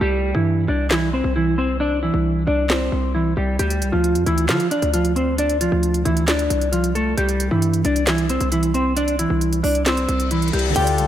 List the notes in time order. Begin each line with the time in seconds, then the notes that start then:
0.01 C2 G3 G4
0.35 G2 E3 E4
0.68 C2 D4 D5
0.91 E3 E4, snare, clap
1.13 C4 C5
1.24 C2
1.36 E3 E4
1.58 C4 C5
1.80 D4 D5
2.03 E3 E4
2.14 C2
2.47 C2 D4 D5
2.70 C4 C5, snare, clap
2.92 C2
3.15 E3 E4
3.37 C2 G3 G4
3.59 D2 G3 G4, closed hi-hat
3.70 closed hi-hat
3.82 C2, closed hi-hat
3.92 D2 F3 F4
4.04 closed hi-hat
4.15 F2, closed hi-hat
4.26 D2 E3 E4, closed hi-hat
4.38 closed hi-hat
4.49 D3 F3 F4, snare, clap, closed hi-hat
4.60 closed hi-hat
4.71 D4 D5, closed hi-hat
4.82 D2, closed hi-hat
4.94 F3 F4, closed hi-hat
5.05 closed hi-hat
5.16 C4 C5, closed hi-hat
5.38 D4 D5, closed hi-hat
5.50 closed hi-hat
5.61 F3 F4, closed hi-hat
5.72 D2
5.83 closed hi-hat
5.94 closed hi-hat
6.05 D2 E3 E4, closed hi-hat
6.17 closed hi-hat
6.28 D4 D5, snare, clap, closed hi-hat
6.39 closed hi-hat
6.50 C2, closed hi-hat
6.61 closed hi-hat
6.72 F3 F4, closed hi-hat
6.84 closed hi-hat
6.95 A3 A4, closed hi-hat
7.17 C2 G3 G4, closed hi-hat
7.29 closed hi-hat
7.40 closed hi-hat
7.51 G2 E3 E4
7.62 closed hi-hat
7.74 closed hi-hat
7.85 C2 D4 D5, closed hi-hat
7.96 closed hi-hat
8.07 E3 E4, snare, clap, closed hi-hat
8.18 closed hi-hat
8.29 C4 C5, closed hi-hat
8.41 C2, closed hi-hat
8.52 E3 E4, closed hi-hat
8.63 closed hi-hat
8.74 C4 C5, closed hi-hat
8.96 D4 D5, closed hi-hat
9.08 closed hi-hat
9.19 E3 E4, closed hi-hat
9.30 C2
9.41 closed hi-hat
9.53 closed hi-hat
9.63 C2 D4 D5, open hi-hat
9.75 closed hi-hat
9.86 C4 C5, snare, clap, closed hi-hat, reverse cymbal
9.97 closed hi-hat
10.09 C2, closed hi-hat
10.20 closed hi-hat
10.31 E3 E4, closed hi-hat
10.42 closed hi-hat
10.48 closed hi-hat
10.53 C2 G3 G4, closed hi-hat
10.59 closed hi-hat
10.70 D3 A3
10.76 D2 D3 D4 F4 G4 A4 G5, closed hi-hat, crash
10.81 D5
10.87 closed hi-hat
10.98 C2, closed hi-hat